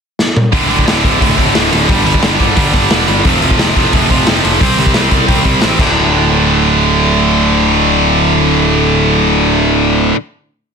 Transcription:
0.19 snare medium
0.37 mid tom medium
0.52 0.65 D1 medium
0.52 0.69 D2 medium
0.52 0.69 A2 medium
0.52 0.67 D3 medium
0.52 kick loud
0.52 open hi-hat medium
0.68 0.83 D1 medium
0.68 0.84 D2 medium
0.68 0.85 A2 medium
0.68 0.86 D3 medium
0.68 open hi-hat medium
0.79 kick medium
0.86 1.00 D1 medium
0.86 1.03 D2 medium
0.86 1.03 A2 medium
0.86 1.02 D3 medium
0.86 snare loud
0.86 open hi-hat medium
1.03 1.17 D1 medium
1.03 1.18 D2 medium
1.03 1.19 A2 medium
1.03 1.20 D3 medium
1.03 kick medium
1.03 open hi-hat medium
1.20 1.34 D1 medium
1.20 1.37 D2 medium
1.20 1.36 A2 loud
1.20 1.36 D3 loud
1.20 kick loud
1.20 open hi-hat medium
1.37 1.51 D1 medium
1.37 1.53 D2 medium
1.37 1.54 A2 medium
1.37 1.54 D3 medium
1.37 kick medium
1.37 open hi-hat medium
1.54 1.68 D1 medium
1.54 1.71 D2 medium
1.54 1.71 A2 medium
1.54 1.70 D3 medium
1.54 snare loud
1.54 open hi-hat medium
1.71 1.85 D1 medium
1.71 1.88 D2 medium
1.71 1.88 A2 medium
1.71 1.88 D3 medium
1.71 open hi-hat medium
1.88 2.02 G1 medium
1.88 2.05 G2 medium
1.88 2.05 D3 medium
1.88 2.04 G3 medium
1.88 kick loud
1.88 open hi-hat medium
2.05 2.18 G1 medium
2.05 2.21 G2 medium
2.05 2.22 D3 medium
2.05 2.23 G3 medium
2.05 open hi-hat medium
2.14 kick medium
2.22 2.36 G1 medium
2.22 2.39 G2 medium
2.22 2.39 D3 medium
2.22 2.38 G3 medium
2.22 snare loud
2.22 open hi-hat medium
2.39 2.53 G1 medium
2.39 2.55 G2 medium
2.39 2.56 D3 medium
2.39 2.57 G3 medium
2.39 kick medium
2.39 open hi-hat soft
2.56 2.70 G1 medium
2.56 2.74 G2 medium
2.56 2.73 D3 loud
2.56 2.73 G3 loud
2.56 kick loud
2.56 open hi-hat medium
2.74 2.87 G1 medium
2.74 2.90 G2 medium
2.74 2.91 D3 medium
2.74 2.91 G3 medium
2.74 kick medium
2.74 open hi-hat medium
2.91 3.04 E1 medium
2.91 3.08 G2 medium
2.91 3.07 D3 medium
2.91 3.06 G3 medium
2.91 snare loud
2.91 open hi-hat medium
3.08 3.21 G1 medium
3.08 3.25 G2 medium
3.08 3.24 D3 medium
3.08 3.24 G3 loud
3.08 open hi-hat medium
3.25 3.38 F1 medium
3.25 3.42 F2 medium
3.25 3.42 C3 medium
3.25 3.41 F3 loud
3.25 kick loud
3.25 open hi-hat medium
3.42 3.55 F1 medium
3.42 3.59 F2 medium
3.42 3.59 C3 medium
3.42 3.60 F3 medium
3.42 open hi-hat medium
3.51 kick medium
3.59 3.72 F1 medium
3.59 3.76 F2 medium
3.59 3.76 C3 medium
3.59 3.75 F3 medium
3.59 snare loud
3.59 open hi-hat medium
3.76 3.89 F1 medium
3.76 3.92 F2 medium
3.76 3.93 C3 medium
3.76 3.93 F3 medium
3.76 kick medium
3.76 open hi-hat medium
3.93 4.06 F1 medium
3.93 4.11 F2 medium
3.93 4.11 C3 loud
3.93 4.10 F3 loud
3.93 kick loud
3.93 open hi-hat medium
4.10 4.23 F1 medium
4.10 4.26 F2 medium
4.10 4.27 C3 medium
4.10 4.27 F3 medium
4.10 kick medium
4.10 open hi-hat medium
4.27 4.39 F1 medium
4.27 4.43 F2 medium
4.27 4.43 C3 medium
4.27 4.43 F3 medium
4.27 snare loud
4.27 open hi-hat medium
4.44 4.57 F1 medium
4.44 4.60 F2 medium
4.44 4.59 C3 medium
4.44 4.60 F3 medium
4.44 open hi-hat medium
4.60 4.74 C2 medium
4.60 4.78 C3 medium
4.60 4.78 G3 medium
4.60 4.77 C4 loud
4.60 kick loud
4.60 open hi-hat medium
4.78 4.91 C2 medium
4.78 4.94 C3 medium
4.78 4.95 G3 medium
4.78 4.95 C4 medium
4.78 open hi-hat medium
4.86 kick medium
4.94 5.08 C2 medium
4.94 5.11 C3 medium
4.94 5.11 G3 medium
4.94 5.10 C4 medium
4.94 snare loud
4.94 open hi-hat medium
5.11 5.24 C2 medium
5.11 5.26 C3 medium
5.11 5.27 G3 medium
5.11 5.27 C4 medium
5.11 kick medium
5.11 open hi-hat medium
5.27 5.41 C2 medium
5.27 5.45 C3 loud
5.27 5.44 G3 loud
5.27 5.44 C4 loud
5.27 kick loud
5.27 open hi-hat medium
5.45 5.57 C2 medium
5.45 5.61 C3 medium
5.45 5.61 G3 medium
5.45 5.61 C4 medium
5.45 kick medium
5.45 open hi-hat medium
5.62 5.75 A1 medium
5.62 5.78 C3 medium
5.62 5.79 G3 medium
5.62 5.79 C4 medium
5.62 snare loud
5.62 open hi-hat medium
5.78 10.11 D1 medium
5.78 10.14 D2 medium
5.78 10.15 A2 medium
5.78 kick loud
5.78 crash medium
5.82 10.16 D3 loud

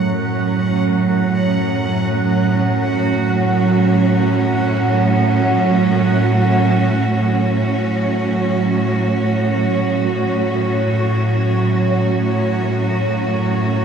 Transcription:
0.00 7.21 F#2 medium
0.00 13.85 A2 medium
0.00 7.21 F#3 medium
0.00 7.27 F#5 medium
0.07 13.85 C#4 medium
0.52 13.85 F#3 medium
2.90 13.85 F#4 medium
7.22 13.85 F#2 medium
7.22 13.85 F#3 medium
7.22 13.85 C#5 medium

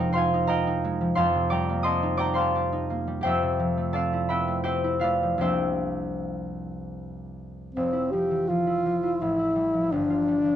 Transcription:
0.00 1.16 F2 medium
0.00 1.23 C3 medium
0.00 1.00 F3 soft
0.00 0.83 G#3 medium
0.00 1.84 C4 medium
0.00 0.32 D#4 medium
0.00 1.22 G#4 medium
0.00 0.47 A#4 medium
0.00 1.22 D5 medium
0.00 0.47 D#5 medium
0.00 0.14 F5 medium
0.00 0.47 G5 medium
0.00 0.14 G#5 medium
0.00 0.40 A#5 medium
0.13 0.49 F4 medium
0.13 1.15 C5 medium
0.13 1.15 F5 medium
0.13 1.14 C6 medium
0.17 1.22 G#5 medium
0.34 0.66 D#4 medium
0.47 1.22 F4 medium
0.47 2.36 A#4 medium
0.47 1.83 D#5 medium
0.47 1.50 G5 medium
0.47 1.50 A#5 medium
0.67 2.01 D#4 medium
0.84 1.22 G#3 medium
1.01 1.22 F3 medium
1.15 3.24 F2 medium
1.15 2.33 C5 medium
1.15 2.35 F5 medium
1.15 1.83 A5 medium
1.15 1.83 C6 loud
1.35 3.27 C3 medium
1.50 3.06 G3 medium
1.50 2.17 D5 medium
1.50 2.18 G5 medium
1.50 2.17 A#5 medium
1.50 2.10 D6 medium
1.69 2.89 A#3 soft
1.83 3.94 C4 soft
1.83 3.26 D#5 medium
1.83 2.35 A5 medium
1.83 2.34 C6 medium
1.83 3.25 D#6 medium
2.03 2.71 D#4 medium
2.17 2.54 G4 medium
2.17 3.26 D5 medium
2.17 3.22 G5 medium
2.17 3.26 A#5 medium
2.17 2.49 D6 loud
2.34 3.27 A#4 medium
2.34 3.23 C5 medium
2.34 3.93 F5 medium
2.34 6.25 C6 medium
2.38 3.92 A5 medium
2.55 3.21 G4 medium
2.72 3.27 D#4 medium
2.90 3.27 A#3 medium
3.07 6.97 G3 soft
3.21 5.45 F2 medium
3.21 4.63 G4 medium
3.21 4.63 C5 medium
3.21 4.29 G5 loud
3.27 4.29 E5 medium
3.43 5.45 C3 soft
3.60 5.21 F3 medium
3.77 4.47 A3 soft
3.93 4.29 C4 soft
3.93 5.45 A4 medium
3.93 5.00 D5 medium
3.93 5.00 F5 medium
3.93 5.44 A5 medium
4.13 4.83 E4 soft
4.29 4.65 C4 soft
4.29 5.00 B4 medium
4.29 4.63 E5 medium
4.29 4.62 G5 medium
4.29 5.44 B5 medium
4.48 5.01 A3 soft
4.64 5.39 C4 soft
4.64 5.40 G4 medium
4.64 5.40 C5 medium
4.64 5.40 E5 medium
4.64 5.39 G5 medium
4.84 5.45 E4 soft
4.99 5.45 A3 soft
4.99 8.89 F4 medium
4.99 5.44 B4 medium
4.99 8.91 F5 medium
5.04 7.77 D5 medium
5.23 5.37 F3 soft
5.38 7.76 C2 soft
5.38 8.12 F3 soft
5.38 7.77 A#3 soft
5.38 9.30 C4 soft
5.38 7.78 D4 soft
5.38 7.78 G4 medium
5.38 9.31 C5 medium
5.38 7.77 G5 medium
5.42 9.32 E5 medium
7.75 9.25 F1 soft
7.75 8.13 C4 medium
7.93 8.66 E4 soft
8.11 8.48 F3 soft
8.11 8.50 G4 medium
8.31 8.62 E3 soft
8.48 8.84 F3 soft
8.48 9.23 F4 medium
8.67 9.02 E4 soft
8.86 9.24 F3 soft
9.03 9.38 E4 soft
9.21 9.95 A1 soft
9.21 9.94 E4 medium
9.39 9.95 E4 soft
9.56 10.27 G3 soft
9.73 10.04 F3 soft
9.92 10.56 G1 soft
9.92 10.56 D4 medium
10.10 10.56 F4 soft
10.28 10.56 G3 soft
10.44 10.56 F3 soft

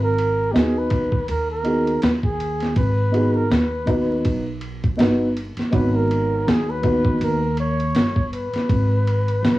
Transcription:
0.00 0.51 G#1 medium
0.00 0.53 A#4 medium
0.18 ride soft
0.52 1.25 D#2 medium
0.52 1.08 B3 medium
0.52 1.08 D#4 medium
0.52 1.09 F#4 medium
0.52 0.57 G4 medium
0.52 0.80 G#4 medium
0.52 1.09 B4 medium
0.56 snare loud
0.56 hi-hat pedal soft
0.56 ride medium
0.78 1.30 B4 medium
0.90 kick medium
0.90 ride medium
1.12 kick medium
1.28 1.99 D#2 medium
1.28 1.49 A#4 medium
1.28 ride medium
1.51 2.00 A#4 medium
1.63 1.92 B3 soft
1.63 1.93 D#4 soft
1.63 1.93 F#4 soft
1.63 1.94 G#4 medium
1.63 ride soft
1.87 ride soft
2.02 2.73 D#2 medium
2.02 2.13 B4 loud
2.02 snare medium
2.02 hi-hat pedal soft
2.02 ride medium
2.23 2.73 G#4 medium
2.23 kick medium
2.40 ride medium
2.60 snare soft
2.60 ride soft
2.76 3.47 G#1 medium
2.76 3.37 B4 loud
2.76 kick loud
2.76 ride medium
3.12 3.40 B3 medium
3.12 3.41 D#4 medium
3.12 3.41 F#4 medium
3.12 3.42 G#4 medium
3.12 ride soft
3.36 3.52 A#4 medium
3.50 4.21 D#2 medium
3.50 4.25 B4 medium
3.50 snare loud
3.50 hi-hat pedal soft
3.50 ride medium
3.85 4.41 B3 medium
3.85 4.41 D#4 medium
3.85 4.42 F#4 medium
3.85 4.43 B4 medium
3.85 kick medium
3.85 ride medium
4.25 4.96 B1 medium
4.25 kick medium
4.25 ride medium
4.61 ride soft
4.84 kick medium
4.84 ride soft
4.97 5.55 G1 medium
4.97 5.25 B3 medium
4.97 5.26 D#4 medium
4.97 5.26 F#4 medium
4.97 5.27 B4 medium
4.97 snare medium
4.97 hi-hat pedal soft
4.97 ride medium
5.37 ride medium
5.57 muted upright bass stroke soft
5.57 snare soft
5.57 ride soft
5.70 6.43 G#1 loud
5.70 6.77 B3 medium
5.70 6.77 D#4 medium
5.70 6.78 F#4 medium
5.70 5.97 B4 loud
5.70 6.78 C#5 medium
5.70 kick loud
5.70 ride medium
5.95 6.51 A#4 medium
6.11 ride soft
6.47 7.18 D#2 medium
6.47 6.72 G#4 medium
6.47 snare loud
6.47 hi-hat pedal soft
6.47 ride medium
6.70 7.26 B4 loud
6.82 7.37 B3 medium
6.82 7.38 D#4 soft
6.82 7.38 F#4 medium
6.82 7.39 B4 medium
6.82 kick medium
6.82 ride medium
7.05 kick medium
7.21 7.91 D#2 loud
7.21 7.59 A#4 medium
7.21 ride medium
7.57 8.29 C#5 loud
7.57 ride medium
7.80 ride soft
7.95 8.51 G1 medium
7.95 snare medium
7.95 hi-hat pedal medium
7.95 ride medium
8.16 kick medium
8.33 9.59 B4 medium
8.33 ride soft
8.53 muted upright bass stroke soft
8.53 snare soft
8.53 ride soft
8.69 9.40 G#1 loud
8.69 kick loud
8.69 ride medium
9.07 ride medium
9.28 ride soft
9.43 9.59 B1 medium
9.43 snare loud
9.43 hi-hat pedal soft
9.43 ride medium

